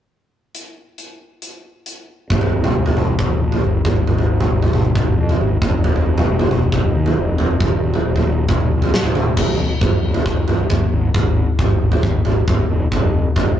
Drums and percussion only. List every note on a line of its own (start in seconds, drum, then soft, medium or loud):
0.55 closed hi-hat soft
0.98 closed hi-hat soft
1.42 closed hi-hat soft
1.86 closed hi-hat soft
2.30 kick loud
2.30 floor tom medium
2.41 floor tom medium
2.64 floor tom medium
2.64 mid tom medium
2.86 floor tom medium
2.97 mid tom medium
3.19 kick medium
3.19 floor tom medium
3.52 floor tom medium
3.85 kick medium
3.85 floor tom medium
4.07 floor tom medium
4.18 floor tom medium
4.40 floor tom medium
4.40 mid tom medium
4.62 floor tom medium
4.73 mid tom medium
4.95 kick medium
4.95 floor tom medium
5.29 floor tom medium
5.62 kick loud
5.62 floor tom medium
5.84 floor tom medium
5.96 floor tom medium
6.18 floor tom medium
6.18 mid tom medium
6.39 floor tom medium
6.51 mid tom medium
6.72 kick medium
6.72 floor tom medium
7.06 floor tom medium
7.38 floor tom medium
7.60 kick loud
7.60 floor tom medium
7.94 floor tom medium
8.16 floor tom medium
8.48 kick medium
8.48 floor tom medium
8.48 mid tom medium
8.82 floor tom medium
8.94 snare medium
9.04 floor tom medium
9.15 floor tom medium
9.15 mid tom medium
9.37 kick loud
9.37 floor tom medium
9.37 crash medium
9.81 kick loud
9.81 floor tom medium
10.14 floor tom medium
10.26 kick medium
10.48 floor tom medium
10.70 kick medium
10.70 floor tom medium
11.14 kick loud
11.14 floor tom medium
11.59 kick medium
11.59 floor tom medium
11.92 floor tom medium
12.03 kick medium
12.25 floor tom medium
12.48 kick loud
12.48 floor tom medium
12.92 kick medium
12.92 floor tom medium
13.36 kick medium
13.36 floor tom medium